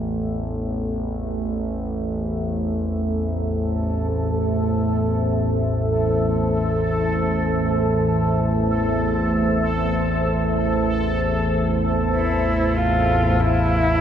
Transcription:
Already playing: A1 E2 A3 C5 E5
3.46 A4
12.16 E4
12.77 F4
13.40 A1 E2 E4 D5

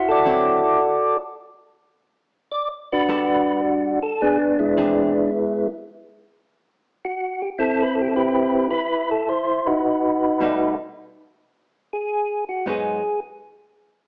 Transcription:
Already playing: E4
0.08 F#4 A4 D5
0.25 D3 F#3 C4 E4
2.52 D5
2.92 D4 F#4 B4
3.09 G3 B3 F#4 A4
4.03 A4
4.21 B3 D4 G#4
4.59 G#3 B3 E4
4.77 E3 C4 D4 G#4
7.05 F#4
7.42 G4
7.58 C4 E4 A4
7.82 B4
7.95 A4
8.02 G4
8.08 A4
8.16 E4 G4 B4
8.71 E4 B4
9.11 A4
9.29 C5
9.66 D#4 F#4 B4
10.41 B2 G3 A3 D#4
11.93 G#4
12.49 F#4
12.66 G#2 F#3 B3 D#4 G#4

